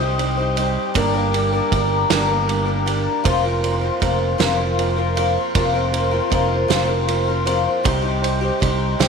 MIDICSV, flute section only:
0, 0, Header, 1, 2, 480
1, 0, Start_track
1, 0, Tempo, 767263
1, 594, Time_signature, 6, 3, 24, 8
1, 5680, End_track
2, 0, Start_track
2, 0, Title_t, "Flute section"
2, 0, Program_c, 0, 73
2, 0, Note_on_c, 0, 72, 61
2, 0, Note_on_c, 0, 75, 64
2, 0, Note_on_c, 0, 79, 69
2, 0, Note_on_c, 0, 87, 80
2, 569, Note_off_c, 0, 72, 0
2, 570, Note_off_c, 0, 75, 0
2, 578, Note_off_c, 0, 87, 0
2, 587, Note_on_c, 0, 86, 77
2, 590, Note_on_c, 0, 70, 72
2, 590, Note_on_c, 0, 74, 65
2, 1850, Note_off_c, 0, 79, 0
2, 1862, Note_off_c, 0, 70, 0
2, 1871, Note_off_c, 0, 86, 0
2, 1875, Note_off_c, 0, 74, 0
2, 2037, Note_on_c, 0, 70, 68
2, 2037, Note_on_c, 0, 77, 60
2, 2038, Note_on_c, 0, 72, 60
2, 2039, Note_on_c, 0, 84, 81
2, 4889, Note_off_c, 0, 70, 0
2, 4889, Note_off_c, 0, 77, 0
2, 4909, Note_on_c, 0, 75, 64
2, 4913, Note_on_c, 0, 67, 75
2, 5680, Note_off_c, 0, 67, 0
2, 5680, Note_off_c, 0, 72, 0
2, 5680, Note_off_c, 0, 75, 0
2, 5680, Note_off_c, 0, 84, 0
2, 5680, End_track
0, 0, End_of_file